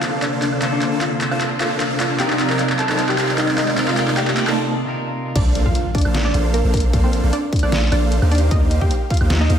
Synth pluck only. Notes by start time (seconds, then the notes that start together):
Already playing: F4 F5
0.22 D4 D5
0.42 D4 D5
0.72 D4 D5
1.01 F4 F5
1.31 F4 F5
1.60 F4 F5
2.00 F4 F5
2.20 G4 G5
2.50 A#4 A#5
2.79 A4 A5
3.09 G4 G5
3.38 D#4 D#5
3.58 D#4 D#5
3.88 F4 F5
4.17 G4 G5
4.47 A4 A5
5.36 D4 D5
5.66 F4 F5
5.95 D4 D5
6.25 D4 D5
6.54 A#3 A#4
6.74 A#3 A#4
7.04 C4 C5
7.33 D4 D5
7.63 D4 D5
7.92 D4 D5
8.31 D4 D5
8.51 D#4 D#5
8.81 G4 G5
9.11 F4 F5
9.41 D#4 D#5